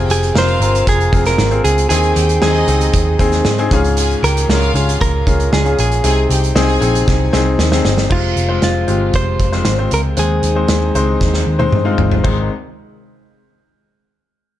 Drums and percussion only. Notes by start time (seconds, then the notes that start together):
0.10 closed hi-hat
0.23 closed hi-hat
0.36 snare
0.48 closed hi-hat
0.62 closed hi-hat
0.75 closed hi-hat
0.87 kick, closed hi-hat
1.01 closed hi-hat
1.13 kick, closed hi-hat
1.26 snare, closed hi-hat
1.38 snare
1.51 closed hi-hat
1.65 closed hi-hat
1.78 closed hi-hat
1.90 closed hi-hat
2.03 closed hi-hat
2.16 closed hi-hat
2.29 closed hi-hat
2.42 snare
2.68 closed hi-hat
2.81 closed hi-hat
2.93 kick, closed hi-hat
3.19 kick, closed hi-hat
3.32 snare, closed hi-hat
3.45 snare
3.58 closed hi-hat
3.71 kick, closed hi-hat
3.84 closed hi-hat
3.97 closed hi-hat
4.10 closed hi-hat
4.24 closed hi-hat
4.37 closed hi-hat
4.50 snare
4.62 closed hi-hat
4.76 closed hi-hat
4.89 closed hi-hat
5.01 kick, closed hi-hat
5.27 kick, closed hi-hat
5.40 closed hi-hat
5.53 snare
5.66 closed hi-hat
5.79 closed hi-hat
5.92 closed hi-hat
6.04 closed hi-hat
6.30 closed hi-hat
6.44 closed hi-hat
6.56 snare
6.69 closed hi-hat
6.82 closed hi-hat
6.95 closed hi-hat
7.08 kick, snare
7.33 snare
7.59 snare
7.72 snare
7.85 snare
7.98 snare
8.11 kick, crash
8.37 closed hi-hat
8.62 snare, closed hi-hat
8.88 closed hi-hat
9.14 kick, closed hi-hat
9.40 kick, closed hi-hat
9.52 snare
9.65 snare, closed hi-hat
9.91 closed hi-hat
10.17 closed hi-hat
10.43 closed hi-hat
10.68 snare, closed hi-hat
10.95 closed hi-hat
11.21 kick, snare
11.34 snare
11.60 high tom
11.72 mid tom
11.98 floor tom
12.12 floor tom
12.25 kick, floor tom, crash